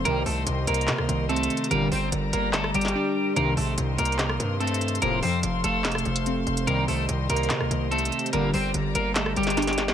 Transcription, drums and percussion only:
0.05 closed hi-hat medium
0.26 open hi-hat medium
0.47 closed hi-hat medium
0.67 closed hi-hat medium
0.74 closed hi-hat medium
0.81 closed hi-hat soft
0.88 cross-stick medium
0.88 snare loud
0.88 clap medium
0.88 closed hi-hat medium
0.98 cross-stick loud
1.09 closed hi-hat medium
1.29 closed hi-hat soft
1.36 closed hi-hat medium
1.43 closed hi-hat medium
1.50 closed hi-hat medium
1.57 closed hi-hat medium
1.64 closed hi-hat medium
1.71 closed hi-hat medium
1.92 open hi-hat medium
2.12 closed hi-hat medium
2.33 closed hi-hat medium
2.53 snare loud
2.53 clap medium
2.53 closed hi-hat medium
2.64 cross-stick loud
2.74 closed hi-hat medium
2.81 snare medium
2.81 closed hi-hat medium
2.88 closed hi-hat medium
3.36 closed hi-hat medium
3.57 open hi-hat medium
3.78 closed hi-hat medium
3.98 closed hi-hat medium
4.05 closed hi-hat medium
4.12 closed hi-hat soft
4.19 cross-stick medium
4.19 snare loud
4.19 clap medium
4.19 closed hi-hat medium
4.29 cross-stick loud
4.40 closed hi-hat medium
4.61 closed hi-hat soft
4.67 closed hi-hat medium
4.74 closed hi-hat medium
4.81 closed hi-hat medium
4.88 closed hi-hat medium
4.95 closed hi-hat medium
5.02 closed hi-hat medium
5.23 open hi-hat medium
5.43 closed hi-hat medium
5.64 closed hi-hat medium
5.84 cross-stick medium
5.84 snare loud
5.84 clap medium
5.84 closed hi-hat medium
5.92 cross-stick loud
5.92 closed hi-hat medium
5.98 closed hi-hat medium
6.05 closed hi-hat soft
6.16 closed hi-hat medium
6.26 closed hi-hat medium
6.47 closed hi-hat soft
6.57 closed hi-hat medium
6.67 closed hi-hat medium
6.88 open hi-hat medium
7.09 closed hi-hat medium
7.30 closed hi-hat medium
7.36 closed hi-hat medium
7.43 closed hi-hat soft
7.50 cross-stick medium
7.50 snare loud
7.50 clap medium
7.50 closed hi-hat medium
7.61 cross-stick medium
7.71 closed hi-hat medium
7.92 closed hi-hat soft
7.98 closed hi-hat medium
8.05 closed hi-hat medium
8.12 closed hi-hat medium
8.19 closed hi-hat medium
8.26 closed hi-hat medium
8.33 closed hi-hat medium
8.54 open hi-hat medium
8.74 closed hi-hat medium
8.95 closed hi-hat medium
9.15 snare loud
9.15 clap medium
9.15 closed hi-hat medium
9.26 cross-stick loud
9.36 closed hi-hat medium
9.43 snare medium
9.43 closed hi-hat medium
9.50 closed hi-hat medium
9.57 snare medium
9.57 closed hi-hat medium
9.62 closed hi-hat medium
9.67 snare medium
9.67 closed hi-hat soft
9.73 closed hi-hat soft
9.78 snare medium
9.78 closed hi-hat medium
9.88 snare loud

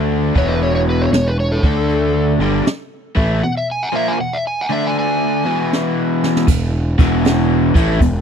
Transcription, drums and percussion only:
0.36 kick loud
0.36 open hi-hat soft
1.12 snare loud
1.12 open hi-hat soft
1.63 kick loud
1.89 open hi-hat soft
2.66 snare loud
2.66 open hi-hat soft
3.17 kick medium
5.73 snare medium
6.24 snare medium
6.37 snare medium
6.48 kick medium
6.48 crash loud
6.48 crash medium
6.99 kick loud
6.99 crash medium
7.25 snare loud
7.25 crash medium
7.75 kick loud
7.75 crash medium
8.01 kick medium
8.01 crash medium

